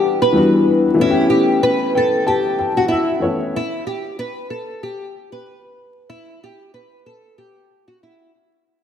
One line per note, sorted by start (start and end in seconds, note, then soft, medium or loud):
0.00 0.29 E3 medium
0.00 0.31 G3 medium
0.00 0.32 B3 medium
0.00 0.33 D4 medium
0.00 0.19 G4 loud
0.00 0.34 F#5 medium
0.22 0.95 B4 medium
0.33 0.93 E3 medium
0.33 0.99 G3 medium
0.33 0.98 B3 medium
0.33 1.00 D4 medium
0.37 1.00 F#4 medium
0.94 3.16 E3 medium
0.94 3.17 A3 medium
0.99 3.19 B3 medium
0.99 3.20 C#4 medium
0.99 1.29 E4 loud
1.04 1.09 F#4 medium
1.10 3.24 G4 medium
1.30 1.59 G4 medium
1.63 1.92 B4 medium
1.95 2.25 A4 medium
1.95 2.25 G5 medium
2.27 2.74 G4 medium
2.27 2.57 A5 medium
2.59 2.76 G5 medium
2.77 2.88 F#4 medium
2.77 2.90 F#5 medium
2.88 3.18 E4 medium
2.88 3.21 E5 medium
3.20 3.53 E3 medium
3.20 3.54 A3 medium
3.20 3.54 B3 medium
3.20 3.55 C#4 medium
3.20 3.52 C#5 medium
3.25 3.56 E4 medium
3.56 3.84 E4 loud
3.87 4.15 G4 medium
4.19 4.47 B4 medium
4.50 4.79 A4 medium
4.83 5.30 G4 medium
5.32 6.06 B4 medium
6.10 6.39 E4 loud
6.43 6.72 G4 medium
6.74 7.03 B4 medium
7.06 7.35 A4 medium
7.38 7.85 G4 medium
7.88 8.00 F#4 medium
8.03 8.31 E4 medium